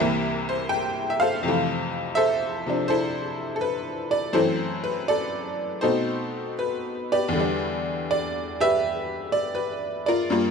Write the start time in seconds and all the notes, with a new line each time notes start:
Already playing: G4 A#4 E5
0.00 C2 C3 E3 A#3
0.49 C5
0.69 G5
1.10 E5
1.20 A4 C5 F5
1.43 F2 C3 A3
1.48 E3
2.15 A4 C5 E5
2.66 C3 F3 D4
2.88 E4 A4 C5
3.56 A4
3.61 B4
4.11 D5
4.33 F#2 E3 A3 E4 A4 C5
4.38 C4
4.84 B4
5.08 A4 D5
5.81 B2 A3 C4 D#4 A4 C5
6.59 B4
7.12 G4 B4 D5
7.29 E2
7.33 D3 G3
7.40 D4
8.11 D5
8.61 G4 B4 E5
9.32 D5
9.55 B4
10.06 F4 A#4 D5
10.30 G2 G3 A#3 F4